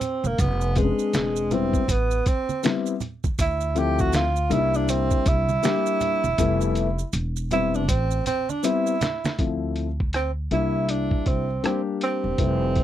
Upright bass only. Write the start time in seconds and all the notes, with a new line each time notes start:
0.24 E1
0.39 F1
1.13 E1
1.88 A1
3.39 D2
4.50 C2
5.26 C2
6.24 E1
6.38 F1
7.13 E1
7.88 A1
9.39 D2
10.51 C2
11.26 C2
12.24 E1
12.38 F1